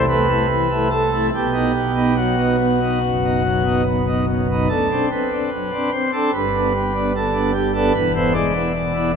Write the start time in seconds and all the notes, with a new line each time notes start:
Already playing: C2 C3
0.09 A3 B4
0.29 A3 E4
0.49 E3
0.70 A3 E4
0.91 A3 A4
1.12 A3 E4
1.35 B1 B2 G4
1.53 B3 D#4
1.75 B3
1.95 B3 D#4
2.16 F#3 F#4
2.37 B3 D#4
2.60 B3
2.81 B3 D#4
3.03 F#1 F#2
3.24 B3 D#4
3.44 F#3
3.66 B3 D#4
3.86 B3
4.06 B3 D#4
4.28 F#3
4.50 B3 D#4
4.69 D2 D3 A4
4.91 C4 D4
5.11 C4 B4
5.32 C4 D4
5.53 F#3
5.72 C4 D4
5.92 C4 C5
6.13 C4 D4 A4
6.33 G1 G2 B4
6.55 B3 D4
6.75 G3
6.95 B3 D4
7.15 D3 A4
7.34 B3 D4
7.54 G3 G4
7.75 B3 D4 A4
7.94 E1 E2 B4
8.16 B3 E4 C5
8.33 G#3 D5
8.54 B3 E4
8.73 B2
8.94 B3 E4